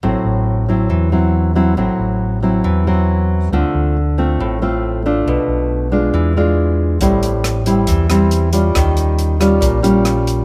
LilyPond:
<<
  \new Staff \with { instrumentName = "Nylon-string guitar" } { \time 4/4 \key a \minor \tempo 4 = 138 << { <fis c' e'>4. <fis c' e'>4 <fis c' e'>4 <fis c' e'>8 | <fis c' e'>4. <fis c' e'>4 <fis c' e'>4. | <a c' f'>4 r8 <a c' f'>4 <a c' f'>4 <a d' f'>8~ | <a d' f'>4. <gis d' f'>4 <gis d' f'>4. |
<g c' e'>4. <g c' e'>4 <g c' e'>4 <g cis' f'>8~ | <g cis' f'>4. <g cis' eis'>4 <g cis' eis'>4. | } \\ { a,2 e2 | a,2 e2 | d2 a,2 | b,2 e2 |
a,2 e2 | dis2 ais,2 | } >> }
  \new Staff \with { instrumentName = "Fingered electric bass" } { \clef bass \time 4/4 \key a \minor a,,16 r16 a,,4. e,2 | a,,16 r16 a,,4. e,2 | d,16 r16 d,4. a,,2 | b,,16 r16 b,,4. e,2 |
a,,2 e,2 | dis,2 ais,,2 | }
  \new DrumStaff \with { instrumentName = "Drums" } \drummode { \time 4/4 r4 r4 r4 r4 | r4 r4 r4 r4 | r4 r4 r4 r4 | r4 r4 r4 r4 |
<hh bd>8 hh8 <hh ss>8 hh8 <hh bd>8 <hh ss>8 hh8 hh8 | <hh bd ss>8 hh8 hh8 <hh ss>8 <hh bd>8 hh8 <hh ss>8 hh8 | }
>>